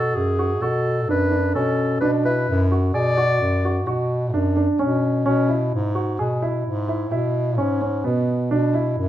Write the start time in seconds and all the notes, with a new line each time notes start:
Already playing: B2 F#4 A4
0.15 F#2 G#4
0.39 F#4
0.62 B2 F#4 A4
1.09 F#2 D4 B4
1.31 D4
1.55 B2 C#4 A4
2.01 B2 D4 B4
2.25 E4 B4
2.49 F#2
2.72 F#4
2.94 B2 G#4 D5
3.17 F#4
3.40 F#2
3.65 F#4
3.87 B2 F#4
4.34 F#2 D4
4.56 D4
4.79 B2 C#4
5.26 B2 C#4
5.49 E4
5.74 G#2
5.95 F#4
6.19 B2 G#4
6.42 E4
6.67 G#2
6.89 E4
7.12 B2 E4
7.58 G#2 C#4
7.82 C#4
8.04 B2 B3
8.51 B2 D4
8.74 E4
8.98 F#2